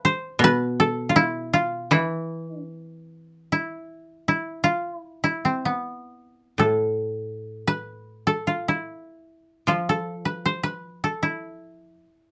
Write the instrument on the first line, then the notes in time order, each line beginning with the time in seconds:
koto
Already playing: A4 B4 E5 F5 A5
0.05 C5
0.39 B2
0.44 B4
0.80 A4
1.09 F4
1.16 E4
1.53 F4
1.91 E3 E4
2.70 C4
3.52 E4
4.28 E4
4.64 F4
4.97 E4
5.24 E4
5.45 C4
5.65 B3
6.58 A2 A4
7.68 B4
8.27 A4
8.47 F4
8.68 E4
9.67 F3 F4
9.89 A4
10.25 B4
10.46 C5
10.63 B4
11.04 A4
11.23 E4